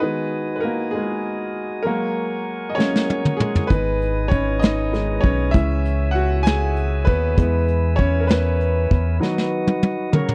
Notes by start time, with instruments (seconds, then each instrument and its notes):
Already playing: tonewheel organ F#4 D#5 D#6
0.00 upright piano D#3 G#3 B3 B4
0.05 tonewheel organ G#5
0.56 upright piano B4
0.60 upright piano A#4
0.65 upright piano A#3
0.91 upright piano G#4
0.95 upright piano G#3
1.83 upright piano F#3 G#3 A#3 A#4
1.87 tonewheel organ A#4 F#5 C#6
2.69 upright piano D#5
2.75 upright piano F#3 G#3 A#3 C#4 C#5
2.80 snare
2.96 snare
3.10 high tom
3.25 mid tom
3.37 upright piano G#3 G#4, mid tom
3.55 floor tom
3.67 fm bass G#1, upright piano D#3 G#3 B3 B4, tonewheel organ B4 D#5 D#6, kick, closed hi-hat
4.02 closed hi-hat
4.28 upright piano C#5, kick, closed hi-hat
4.32 upright piano C#4
4.59 upright piano D#4 D#5, closed hi-hat
4.64 snare
4.93 upright piano D#3 G#3 B3, snare, closed hi-hat
5.21 fm bass B1, upright piano C#5, kick, closed hi-hat
5.25 upright piano C#4
5.51 fm bass C#2, upright piano E3 G#3 C#4 E5, tonewheel organ C#5 E5 G#5 E6, kick, closed hi-hat
5.55 upright piano E4
5.85 closed hi-hat
6.11 upright piano F#5, closed hi-hat
6.15 upright piano F#4
6.43 upright piano G#4 G#5, snare, closed hi-hat
6.76 closed hi-hat
7.05 fm bass D#2, upright piano B3 B4, kick, closed hi-hat
7.36 fm bass E2, upright piano E3 G#3 B3, tonewheel organ B4 E5 E6, kick, closed hi-hat
7.68 closed hi-hat
7.96 upright piano C#4 C#5, kick, closed hi-hat
8.20 upright piano A#4
8.27 upright piano B3 B4, snare, closed hi-hat
8.61 closed hi-hat
8.91 fm bass E2, kick, closed hi-hat
9.20 upright piano D#3 F#3 B3, tonewheel organ F#4 D#5 F#5 D#6, snare
9.38 snare
9.67 high tom
9.83 high tom
10.12 upright piano C#3 F#3 A#4, tonewheel organ C#5 F#5 A#5 C#6, mid tom
10.29 mid tom